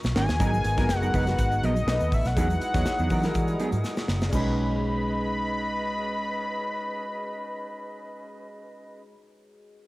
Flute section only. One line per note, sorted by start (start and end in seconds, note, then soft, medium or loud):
0.00 0.14 A#4 medium
0.00 0.17 A#5 medium
0.00 0.38 C#6 medium
0.40 1.86 G#4 medium
0.40 1.85 D#5 medium
0.40 4.29 F#5 medium
0.40 1.62 A#5 medium
1.86 2.35 A4 medium
1.86 2.35 D#5 medium
1.86 2.35 B5 medium
2.36 4.31 G#4 medium
2.36 4.31 D#5 medium
2.36 4.31 D#6 medium
4.32 9.02 C#4 medium
4.32 9.02 G#4 medium
4.32 9.02 B4 medium
4.32 9.02 D#5 medium